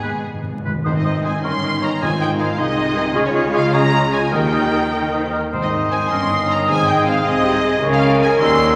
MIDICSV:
0, 0, Header, 1, 12, 480
1, 0, Start_track
1, 0, Key_signature, -4, "major"
1, 0, Tempo, 404585
1, 1014, Time_signature, 6, 3, 24, 8
1, 1482, Tempo, 382166
1, 4362, Tempo, 395778
1, 7242, Tempo, 385604
1, 10775, End_track
2, 0, Start_track
2, 0, Title_t, "Flute"
2, 0, Program_c, 0, 73
2, 0, Note_on_c, 0, 80, 66
2, 282, Note_off_c, 0, 80, 0
2, 1001, Note_on_c, 0, 87, 68
2, 1072, Note_off_c, 0, 87, 0
2, 1241, Note_on_c, 0, 87, 61
2, 1312, Note_off_c, 0, 87, 0
2, 1477, Note_on_c, 0, 87, 61
2, 1552, Note_off_c, 0, 87, 0
2, 1727, Note_on_c, 0, 85, 68
2, 1803, Note_off_c, 0, 85, 0
2, 1963, Note_on_c, 0, 85, 55
2, 2039, Note_off_c, 0, 85, 0
2, 2198, Note_on_c, 0, 85, 60
2, 2273, Note_off_c, 0, 85, 0
2, 2439, Note_on_c, 0, 84, 70
2, 2514, Note_off_c, 0, 84, 0
2, 2677, Note_on_c, 0, 84, 62
2, 2752, Note_off_c, 0, 84, 0
2, 2919, Note_on_c, 0, 84, 72
2, 2994, Note_off_c, 0, 84, 0
2, 3144, Note_on_c, 0, 84, 82
2, 3220, Note_off_c, 0, 84, 0
2, 3396, Note_on_c, 0, 84, 72
2, 3472, Note_off_c, 0, 84, 0
2, 3632, Note_on_c, 0, 84, 70
2, 3707, Note_off_c, 0, 84, 0
2, 3876, Note_on_c, 0, 85, 92
2, 3951, Note_off_c, 0, 85, 0
2, 4123, Note_on_c, 0, 85, 83
2, 4199, Note_off_c, 0, 85, 0
2, 4361, Note_on_c, 0, 85, 94
2, 4434, Note_off_c, 0, 85, 0
2, 4590, Note_on_c, 0, 85, 98
2, 4662, Note_off_c, 0, 85, 0
2, 4833, Note_on_c, 0, 85, 74
2, 4905, Note_off_c, 0, 85, 0
2, 5067, Note_on_c, 0, 85, 73
2, 5140, Note_off_c, 0, 85, 0
2, 5318, Note_on_c, 0, 87, 77
2, 5391, Note_off_c, 0, 87, 0
2, 5570, Note_on_c, 0, 87, 66
2, 5642, Note_off_c, 0, 87, 0
2, 5799, Note_on_c, 0, 87, 64
2, 5872, Note_off_c, 0, 87, 0
2, 6030, Note_on_c, 0, 87, 66
2, 6103, Note_off_c, 0, 87, 0
2, 6278, Note_on_c, 0, 87, 50
2, 6351, Note_off_c, 0, 87, 0
2, 6530, Note_on_c, 0, 87, 57
2, 6603, Note_off_c, 0, 87, 0
2, 6769, Note_on_c, 0, 87, 90
2, 9306, Note_off_c, 0, 87, 0
2, 9625, Note_on_c, 0, 85, 104
2, 10351, Note_on_c, 0, 88, 109
2, 10370, Note_off_c, 0, 85, 0
2, 10775, Note_off_c, 0, 88, 0
2, 10775, End_track
3, 0, Start_track
3, 0, Title_t, "Violin section"
3, 0, Program_c, 1, 48
3, 0, Note_on_c, 1, 80, 63
3, 286, Note_off_c, 1, 80, 0
3, 1140, Note_on_c, 1, 75, 80
3, 1461, Note_off_c, 1, 75, 0
3, 1486, Note_on_c, 1, 80, 85
3, 1724, Note_off_c, 1, 80, 0
3, 1726, Note_on_c, 1, 84, 96
3, 2200, Note_off_c, 1, 84, 0
3, 2222, Note_on_c, 1, 82, 87
3, 2454, Note_on_c, 1, 80, 98
3, 2456, Note_off_c, 1, 82, 0
3, 2549, Note_off_c, 1, 80, 0
3, 2713, Note_on_c, 1, 79, 103
3, 2804, Note_off_c, 1, 79, 0
3, 2946, Note_on_c, 1, 77, 101
3, 3170, Note_off_c, 1, 77, 0
3, 3182, Note_on_c, 1, 75, 117
3, 3888, Note_off_c, 1, 75, 0
3, 4002, Note_on_c, 1, 73, 107
3, 4103, Note_off_c, 1, 73, 0
3, 4376, Note_on_c, 1, 77, 124
3, 4599, Note_off_c, 1, 77, 0
3, 4616, Note_on_c, 1, 82, 127
3, 5074, Note_off_c, 1, 82, 0
3, 5083, Note_on_c, 1, 80, 109
3, 5319, Note_off_c, 1, 80, 0
3, 5324, Note_on_c, 1, 79, 107
3, 6529, Note_off_c, 1, 79, 0
3, 6896, Note_on_c, 1, 75, 87
3, 6993, Note_off_c, 1, 75, 0
3, 7238, Note_on_c, 1, 80, 100
3, 7336, Note_off_c, 1, 80, 0
3, 7492, Note_on_c, 1, 84, 98
3, 7960, Note_off_c, 1, 84, 0
3, 7979, Note_on_c, 1, 82, 104
3, 8212, Note_off_c, 1, 82, 0
3, 8216, Note_on_c, 1, 80, 125
3, 8448, Note_off_c, 1, 80, 0
3, 8453, Note_on_c, 1, 79, 120
3, 8684, Note_off_c, 1, 79, 0
3, 8685, Note_on_c, 1, 77, 111
3, 8912, Note_on_c, 1, 75, 121
3, 8918, Note_off_c, 1, 77, 0
3, 9629, Note_off_c, 1, 75, 0
3, 9749, Note_on_c, 1, 77, 127
3, 10084, Note_off_c, 1, 77, 0
3, 10110, Note_on_c, 1, 80, 127
3, 10346, Note_off_c, 1, 80, 0
3, 10355, Note_on_c, 1, 84, 124
3, 10775, Note_off_c, 1, 84, 0
3, 10775, End_track
4, 0, Start_track
4, 0, Title_t, "Violin section"
4, 0, Program_c, 2, 48
4, 0, Note_on_c, 2, 68, 80
4, 284, Note_off_c, 2, 68, 0
4, 1131, Note_on_c, 2, 75, 63
4, 1457, Note_off_c, 2, 75, 0
4, 1487, Note_on_c, 2, 80, 72
4, 1584, Note_off_c, 2, 80, 0
4, 1746, Note_on_c, 2, 84, 91
4, 2210, Note_off_c, 2, 84, 0
4, 2217, Note_on_c, 2, 82, 83
4, 2440, Note_on_c, 2, 80, 107
4, 2454, Note_off_c, 2, 82, 0
4, 2681, Note_on_c, 2, 79, 92
4, 2685, Note_off_c, 2, 80, 0
4, 2778, Note_off_c, 2, 79, 0
4, 2910, Note_on_c, 2, 77, 84
4, 3009, Note_off_c, 2, 77, 0
4, 3167, Note_on_c, 2, 75, 92
4, 3865, Note_off_c, 2, 75, 0
4, 4010, Note_on_c, 2, 73, 97
4, 4342, Note_off_c, 2, 73, 0
4, 4367, Note_on_c, 2, 77, 109
4, 4577, Note_on_c, 2, 82, 123
4, 4599, Note_off_c, 2, 77, 0
4, 5064, Note_off_c, 2, 82, 0
4, 5073, Note_on_c, 2, 80, 87
4, 5303, Note_on_c, 2, 79, 103
4, 5309, Note_off_c, 2, 80, 0
4, 6519, Note_off_c, 2, 79, 0
4, 6881, Note_on_c, 2, 75, 76
4, 7215, Note_off_c, 2, 75, 0
4, 7254, Note_on_c, 2, 80, 90
4, 7481, Note_on_c, 2, 84, 102
4, 7490, Note_off_c, 2, 80, 0
4, 7964, Note_off_c, 2, 84, 0
4, 7981, Note_on_c, 2, 82, 78
4, 8074, Note_off_c, 2, 82, 0
4, 8200, Note_on_c, 2, 80, 123
4, 8436, Note_off_c, 2, 80, 0
4, 8440, Note_on_c, 2, 79, 94
4, 8673, Note_off_c, 2, 79, 0
4, 8683, Note_on_c, 2, 77, 98
4, 8911, Note_on_c, 2, 75, 109
4, 8912, Note_off_c, 2, 77, 0
4, 9629, Note_off_c, 2, 75, 0
4, 9751, Note_on_c, 2, 77, 100
4, 9850, Note_off_c, 2, 77, 0
4, 10121, Note_on_c, 2, 80, 104
4, 10215, Note_off_c, 2, 80, 0
4, 10372, Note_on_c, 2, 84, 119
4, 10775, Note_off_c, 2, 84, 0
4, 10775, End_track
5, 0, Start_track
5, 0, Title_t, "Oboe"
5, 0, Program_c, 3, 68
5, 37, Note_on_c, 3, 71, 51
5, 124, Note_off_c, 3, 71, 0
5, 775, Note_on_c, 3, 71, 50
5, 860, Note_off_c, 3, 71, 0
5, 1017, Note_on_c, 3, 72, 65
5, 1121, Note_off_c, 3, 72, 0
5, 1240, Note_on_c, 3, 72, 58
5, 1347, Note_off_c, 3, 72, 0
5, 1476, Note_on_c, 3, 72, 60
5, 1588, Note_off_c, 3, 72, 0
5, 1714, Note_on_c, 3, 70, 63
5, 1826, Note_off_c, 3, 70, 0
5, 1964, Note_on_c, 3, 70, 55
5, 2074, Note_off_c, 3, 70, 0
5, 2204, Note_on_c, 3, 70, 56
5, 2313, Note_off_c, 3, 70, 0
5, 2447, Note_on_c, 3, 68, 77
5, 2556, Note_off_c, 3, 68, 0
5, 2682, Note_on_c, 3, 68, 72
5, 2791, Note_off_c, 3, 68, 0
5, 2926, Note_on_c, 3, 68, 67
5, 3033, Note_off_c, 3, 68, 0
5, 3160, Note_on_c, 3, 68, 76
5, 3268, Note_off_c, 3, 68, 0
5, 3384, Note_on_c, 3, 68, 64
5, 3495, Note_off_c, 3, 68, 0
5, 3623, Note_on_c, 3, 68, 81
5, 3735, Note_off_c, 3, 68, 0
5, 3865, Note_on_c, 3, 68, 102
5, 3977, Note_off_c, 3, 68, 0
5, 4116, Note_on_c, 3, 68, 88
5, 4226, Note_off_c, 3, 68, 0
5, 4352, Note_on_c, 3, 68, 90
5, 4460, Note_off_c, 3, 68, 0
5, 4602, Note_on_c, 3, 68, 89
5, 4708, Note_off_c, 3, 68, 0
5, 4828, Note_on_c, 3, 68, 75
5, 4937, Note_off_c, 3, 68, 0
5, 5065, Note_on_c, 3, 68, 72
5, 5176, Note_off_c, 3, 68, 0
5, 5303, Note_on_c, 3, 70, 84
5, 5415, Note_off_c, 3, 70, 0
5, 5554, Note_on_c, 3, 70, 68
5, 5662, Note_off_c, 3, 70, 0
5, 5789, Note_on_c, 3, 70, 61
5, 5899, Note_off_c, 3, 70, 0
5, 6047, Note_on_c, 3, 70, 65
5, 6154, Note_off_c, 3, 70, 0
5, 6286, Note_on_c, 3, 70, 54
5, 6395, Note_off_c, 3, 70, 0
5, 6529, Note_on_c, 3, 70, 57
5, 6637, Note_off_c, 3, 70, 0
5, 6773, Note_on_c, 3, 72, 73
5, 7438, Note_off_c, 3, 72, 0
5, 7484, Note_on_c, 3, 70, 76
5, 8202, Note_on_c, 3, 68, 89
5, 8221, Note_off_c, 3, 70, 0
5, 10339, Note_on_c, 3, 70, 106
5, 10358, Note_off_c, 3, 68, 0
5, 10775, Note_off_c, 3, 70, 0
5, 10775, End_track
6, 0, Start_track
6, 0, Title_t, "French horn section"
6, 0, Program_c, 4, 60
6, 0, Note_on_c, 4, 56, 64
6, 295, Note_off_c, 4, 56, 0
6, 1726, Note_on_c, 4, 63, 70
6, 2400, Note_off_c, 4, 63, 0
6, 2450, Note_on_c, 4, 65, 82
6, 3152, Note_on_c, 4, 63, 88
6, 3166, Note_off_c, 4, 65, 0
6, 3872, Note_off_c, 4, 63, 0
6, 3881, Note_on_c, 4, 65, 114
6, 5287, Note_off_c, 4, 65, 0
6, 5315, Note_on_c, 4, 67, 86
6, 5990, Note_off_c, 4, 67, 0
6, 6047, Note_on_c, 4, 70, 75
6, 6269, Note_off_c, 4, 70, 0
6, 6303, Note_on_c, 4, 72, 74
6, 6536, Note_off_c, 4, 72, 0
6, 6545, Note_on_c, 4, 70, 65
6, 6649, Note_off_c, 4, 70, 0
6, 7489, Note_on_c, 4, 63, 92
6, 8867, Note_off_c, 4, 63, 0
6, 8913, Note_on_c, 4, 68, 116
6, 9133, Note_on_c, 4, 67, 107
6, 9146, Note_off_c, 4, 68, 0
6, 9245, Note_off_c, 4, 67, 0
6, 9369, Note_on_c, 4, 68, 103
6, 9615, Note_off_c, 4, 68, 0
6, 9618, Note_on_c, 4, 70, 127
6, 10775, Note_off_c, 4, 70, 0
6, 10775, End_track
7, 0, Start_track
7, 0, Title_t, "Clarinet"
7, 0, Program_c, 5, 71
7, 46, Note_on_c, 5, 56, 48
7, 129, Note_off_c, 5, 56, 0
7, 775, Note_on_c, 5, 56, 56
7, 860, Note_off_c, 5, 56, 0
7, 1012, Note_on_c, 5, 63, 59
7, 1117, Note_off_c, 5, 63, 0
7, 1243, Note_on_c, 5, 63, 56
7, 1349, Note_off_c, 5, 63, 0
7, 1466, Note_on_c, 5, 63, 51
7, 1579, Note_off_c, 5, 63, 0
7, 1723, Note_on_c, 5, 63, 67
7, 1833, Note_off_c, 5, 63, 0
7, 1960, Note_on_c, 5, 63, 53
7, 2070, Note_off_c, 5, 63, 0
7, 2210, Note_on_c, 5, 63, 63
7, 2318, Note_off_c, 5, 63, 0
7, 2449, Note_on_c, 5, 63, 72
7, 2557, Note_off_c, 5, 63, 0
7, 2687, Note_on_c, 5, 63, 62
7, 2795, Note_off_c, 5, 63, 0
7, 2926, Note_on_c, 5, 63, 62
7, 3033, Note_off_c, 5, 63, 0
7, 3159, Note_on_c, 5, 63, 83
7, 3267, Note_off_c, 5, 63, 0
7, 3384, Note_on_c, 5, 63, 71
7, 3495, Note_off_c, 5, 63, 0
7, 3626, Note_on_c, 5, 63, 80
7, 3737, Note_off_c, 5, 63, 0
7, 3862, Note_on_c, 5, 65, 89
7, 3974, Note_off_c, 5, 65, 0
7, 4091, Note_on_c, 5, 65, 85
7, 4206, Note_off_c, 5, 65, 0
7, 4328, Note_on_c, 5, 65, 86
7, 4442, Note_off_c, 5, 65, 0
7, 4560, Note_on_c, 5, 65, 96
7, 4675, Note_off_c, 5, 65, 0
7, 4807, Note_on_c, 5, 65, 73
7, 4921, Note_off_c, 5, 65, 0
7, 5070, Note_on_c, 5, 65, 70
7, 5179, Note_off_c, 5, 65, 0
7, 5317, Note_on_c, 5, 63, 80
7, 5425, Note_off_c, 5, 63, 0
7, 5558, Note_on_c, 5, 63, 63
7, 5666, Note_off_c, 5, 63, 0
7, 5806, Note_on_c, 5, 63, 55
7, 5913, Note_off_c, 5, 63, 0
7, 6046, Note_on_c, 5, 63, 60
7, 6153, Note_off_c, 5, 63, 0
7, 6297, Note_on_c, 5, 63, 56
7, 6403, Note_off_c, 5, 63, 0
7, 6533, Note_on_c, 5, 63, 57
7, 6640, Note_off_c, 5, 63, 0
7, 6764, Note_on_c, 5, 63, 69
7, 7434, Note_off_c, 5, 63, 0
7, 7479, Note_on_c, 5, 61, 78
7, 8189, Note_off_c, 5, 61, 0
7, 8196, Note_on_c, 5, 60, 89
7, 9613, Note_on_c, 5, 61, 108
7, 9632, Note_off_c, 5, 60, 0
7, 10775, Note_off_c, 5, 61, 0
7, 10775, End_track
8, 0, Start_track
8, 0, Title_t, "Viola section"
8, 0, Program_c, 6, 48
8, 0, Note_on_c, 6, 59, 59
8, 654, Note_off_c, 6, 59, 0
8, 1014, Note_on_c, 6, 63, 65
8, 1017, Note_on_c, 6, 60, 66
8, 1676, Note_off_c, 6, 63, 0
8, 1677, Note_off_c, 6, 60, 0
8, 1732, Note_on_c, 6, 61, 72
8, 1736, Note_on_c, 6, 63, 70
8, 2435, Note_off_c, 6, 63, 0
8, 2449, Note_on_c, 6, 60, 68
8, 2450, Note_on_c, 6, 63, 72
8, 2453, Note_off_c, 6, 61, 0
8, 3151, Note_off_c, 6, 63, 0
8, 3165, Note_off_c, 6, 60, 0
8, 3167, Note_on_c, 6, 56, 88
8, 3169, Note_on_c, 6, 63, 92
8, 3854, Note_off_c, 6, 56, 0
8, 3867, Note_off_c, 6, 63, 0
8, 3869, Note_on_c, 6, 56, 107
8, 3871, Note_on_c, 6, 65, 92
8, 5281, Note_off_c, 6, 56, 0
8, 5282, Note_off_c, 6, 65, 0
8, 5315, Note_on_c, 6, 70, 83
8, 5317, Note_on_c, 6, 63, 83
8, 6500, Note_off_c, 6, 70, 0
8, 6501, Note_off_c, 6, 63, 0
8, 6773, Note_on_c, 6, 60, 74
8, 6775, Note_on_c, 6, 72, 67
8, 6992, Note_off_c, 6, 60, 0
8, 6993, Note_off_c, 6, 72, 0
8, 7009, Note_on_c, 6, 63, 66
8, 7009, Note_on_c, 6, 75, 63
8, 7244, Note_off_c, 6, 63, 0
8, 7245, Note_off_c, 6, 75, 0
8, 7249, Note_on_c, 6, 72, 67
8, 7252, Note_on_c, 6, 60, 69
8, 7488, Note_off_c, 6, 72, 0
8, 7489, Note_off_c, 6, 60, 0
8, 7490, Note_on_c, 6, 61, 77
8, 7490, Note_on_c, 6, 73, 74
8, 7711, Note_off_c, 6, 61, 0
8, 7711, Note_off_c, 6, 73, 0
8, 7726, Note_on_c, 6, 63, 67
8, 7730, Note_on_c, 6, 75, 65
8, 7966, Note_off_c, 6, 63, 0
8, 7968, Note_off_c, 6, 75, 0
8, 7968, Note_on_c, 6, 61, 60
8, 7969, Note_on_c, 6, 73, 63
8, 8202, Note_on_c, 6, 60, 78
8, 8202, Note_on_c, 6, 72, 81
8, 8207, Note_off_c, 6, 61, 0
8, 8207, Note_off_c, 6, 73, 0
8, 8425, Note_off_c, 6, 60, 0
8, 8425, Note_off_c, 6, 72, 0
8, 8438, Note_on_c, 6, 63, 74
8, 8441, Note_on_c, 6, 75, 77
8, 8677, Note_off_c, 6, 63, 0
8, 8677, Note_on_c, 6, 60, 85
8, 8677, Note_on_c, 6, 72, 80
8, 8678, Note_off_c, 6, 75, 0
8, 8886, Note_off_c, 6, 60, 0
8, 8899, Note_on_c, 6, 68, 87
8, 8901, Note_on_c, 6, 60, 92
8, 8914, Note_off_c, 6, 72, 0
8, 9127, Note_off_c, 6, 68, 0
8, 9128, Note_off_c, 6, 60, 0
8, 9144, Note_on_c, 6, 63, 86
8, 9149, Note_on_c, 6, 72, 82
8, 9381, Note_on_c, 6, 60, 77
8, 9384, Note_on_c, 6, 68, 75
8, 9387, Note_off_c, 6, 63, 0
8, 9389, Note_off_c, 6, 72, 0
8, 9611, Note_off_c, 6, 68, 0
8, 9621, Note_on_c, 6, 61, 104
8, 9626, Note_off_c, 6, 60, 0
8, 9626, Note_on_c, 6, 68, 113
8, 10296, Note_off_c, 6, 61, 0
8, 10298, Note_off_c, 6, 68, 0
8, 10342, Note_on_c, 6, 61, 101
8, 10343, Note_on_c, 6, 67, 106
8, 10775, Note_off_c, 6, 61, 0
8, 10775, Note_off_c, 6, 67, 0
8, 10775, End_track
9, 0, Start_track
9, 0, Title_t, "Bassoon"
9, 0, Program_c, 7, 70
9, 1020, Note_on_c, 7, 51, 68
9, 1123, Note_off_c, 7, 51, 0
9, 1255, Note_on_c, 7, 51, 59
9, 1358, Note_off_c, 7, 51, 0
9, 1491, Note_on_c, 7, 51, 63
9, 1599, Note_off_c, 7, 51, 0
9, 1731, Note_on_c, 7, 51, 60
9, 1839, Note_off_c, 7, 51, 0
9, 1967, Note_on_c, 7, 51, 55
9, 2076, Note_off_c, 7, 51, 0
9, 2212, Note_on_c, 7, 51, 57
9, 2320, Note_off_c, 7, 51, 0
9, 2448, Note_on_c, 7, 51, 72
9, 2557, Note_off_c, 7, 51, 0
9, 2682, Note_on_c, 7, 51, 67
9, 2791, Note_off_c, 7, 51, 0
9, 2930, Note_on_c, 7, 51, 70
9, 3037, Note_off_c, 7, 51, 0
9, 3166, Note_on_c, 7, 51, 80
9, 3272, Note_off_c, 7, 51, 0
9, 3397, Note_on_c, 7, 51, 75
9, 3505, Note_off_c, 7, 51, 0
9, 3641, Note_on_c, 7, 51, 81
9, 3749, Note_off_c, 7, 51, 0
9, 3878, Note_on_c, 7, 56, 91
9, 3987, Note_off_c, 7, 56, 0
9, 4113, Note_on_c, 7, 56, 90
9, 4224, Note_off_c, 7, 56, 0
9, 4349, Note_on_c, 7, 56, 93
9, 4458, Note_off_c, 7, 56, 0
9, 4600, Note_on_c, 7, 56, 90
9, 4706, Note_off_c, 7, 56, 0
9, 4821, Note_on_c, 7, 56, 80
9, 4932, Note_off_c, 7, 56, 0
9, 5064, Note_on_c, 7, 56, 72
9, 5175, Note_off_c, 7, 56, 0
9, 5306, Note_on_c, 7, 51, 86
9, 5417, Note_off_c, 7, 51, 0
9, 5557, Note_on_c, 7, 51, 65
9, 5665, Note_off_c, 7, 51, 0
9, 5805, Note_on_c, 7, 51, 66
9, 5912, Note_off_c, 7, 51, 0
9, 6037, Note_on_c, 7, 51, 57
9, 6147, Note_off_c, 7, 51, 0
9, 6287, Note_on_c, 7, 51, 61
9, 6395, Note_off_c, 7, 51, 0
9, 6532, Note_on_c, 7, 51, 60
9, 6639, Note_off_c, 7, 51, 0
9, 6775, Note_on_c, 7, 51, 74
9, 8212, Note_on_c, 7, 56, 93
9, 8231, Note_off_c, 7, 51, 0
9, 10335, Note_off_c, 7, 56, 0
9, 10343, Note_on_c, 7, 55, 85
9, 10775, Note_off_c, 7, 55, 0
9, 10775, End_track
10, 0, Start_track
10, 0, Title_t, "Cello section"
10, 0, Program_c, 8, 48
10, 0, Note_on_c, 8, 44, 64
10, 203, Note_off_c, 8, 44, 0
10, 295, Note_on_c, 8, 44, 57
10, 936, Note_off_c, 8, 44, 0
10, 1011, Note_on_c, 8, 44, 70
10, 1674, Note_off_c, 8, 44, 0
10, 1726, Note_on_c, 8, 43, 65
10, 2435, Note_off_c, 8, 43, 0
10, 2451, Note_on_c, 8, 44, 72
10, 3163, Note_on_c, 8, 48, 90
10, 3166, Note_off_c, 8, 44, 0
10, 3864, Note_off_c, 8, 48, 0
10, 3875, Note_on_c, 8, 49, 107
10, 5313, Note_off_c, 8, 49, 0
10, 5322, Note_on_c, 8, 51, 91
10, 6504, Note_off_c, 8, 51, 0
10, 6770, Note_on_c, 8, 44, 83
10, 7437, Note_off_c, 8, 44, 0
10, 7488, Note_on_c, 8, 43, 81
10, 8204, Note_on_c, 8, 44, 91
10, 8208, Note_off_c, 8, 43, 0
10, 8914, Note_off_c, 8, 44, 0
10, 8914, Note_on_c, 8, 48, 96
10, 9616, Note_off_c, 8, 48, 0
10, 9630, Note_on_c, 8, 49, 122
10, 10301, Note_off_c, 8, 49, 0
10, 10346, Note_on_c, 8, 51, 99
10, 10775, Note_off_c, 8, 51, 0
10, 10775, End_track
11, 0, Start_track
11, 0, Title_t, "Timpani"
11, 0, Program_c, 10, 47
11, 32, Note_on_c, 10, 44, 41
11, 111, Note_off_c, 10, 44, 0
11, 126, Note_on_c, 10, 44, 45
11, 208, Note_off_c, 10, 44, 0
11, 222, Note_on_c, 10, 44, 49
11, 303, Note_off_c, 10, 44, 0
11, 317, Note_on_c, 10, 44, 50
11, 394, Note_off_c, 10, 44, 0
11, 408, Note_on_c, 10, 44, 53
11, 494, Note_off_c, 10, 44, 0
11, 510, Note_on_c, 10, 44, 60
11, 592, Note_off_c, 10, 44, 0
11, 604, Note_on_c, 10, 44, 69
11, 687, Note_off_c, 10, 44, 0
11, 700, Note_on_c, 10, 44, 76
11, 779, Note_off_c, 10, 44, 0
11, 793, Note_on_c, 10, 44, 78
11, 869, Note_off_c, 10, 44, 0
11, 883, Note_on_c, 10, 44, 76
11, 964, Note_off_c, 10, 44, 0
11, 1020, Note_on_c, 10, 44, 107
11, 1679, Note_off_c, 10, 44, 0
11, 2452, Note_on_c, 10, 44, 113
11, 3117, Note_off_c, 10, 44, 0
11, 5319, Note_on_c, 10, 51, 113
11, 5992, Note_off_c, 10, 51, 0
11, 6776, Note_on_c, 10, 44, 104
11, 7439, Note_off_c, 10, 44, 0
11, 8210, Note_on_c, 10, 44, 109
11, 8867, Note_off_c, 10, 44, 0
11, 10775, End_track
12, 0, Start_track
12, 0, Title_t, "Double bass section"
12, 0, Program_c, 11, 48
12, 0, Note_on_c, 11, 32, 55
12, 203, Note_off_c, 11, 32, 0
12, 299, Note_on_c, 11, 32, 58
12, 938, Note_off_c, 11, 32, 0
12, 1025, Note_on_c, 11, 32, 63
12, 1682, Note_off_c, 11, 32, 0
12, 1736, Note_on_c, 11, 31, 76
12, 2440, Note_off_c, 11, 31, 0
12, 2454, Note_on_c, 11, 32, 73
12, 3159, Note_on_c, 11, 36, 86
12, 3168, Note_off_c, 11, 32, 0
12, 3861, Note_off_c, 11, 36, 0
12, 3872, Note_on_c, 11, 37, 99
12, 5311, Note_off_c, 11, 37, 0
12, 5315, Note_on_c, 11, 39, 81
12, 6500, Note_off_c, 11, 39, 0
12, 6767, Note_on_c, 11, 32, 75
12, 7435, Note_off_c, 11, 32, 0
12, 7484, Note_on_c, 11, 31, 87
12, 8206, Note_off_c, 11, 31, 0
12, 8217, Note_on_c, 11, 32, 79
12, 8920, Note_on_c, 11, 36, 108
12, 8921, Note_off_c, 11, 32, 0
12, 9619, Note_off_c, 11, 36, 0
12, 9637, Note_on_c, 11, 37, 102
12, 10304, Note_off_c, 11, 37, 0
12, 10356, Note_on_c, 11, 39, 107
12, 10775, Note_off_c, 11, 39, 0
12, 10775, End_track
0, 0, End_of_file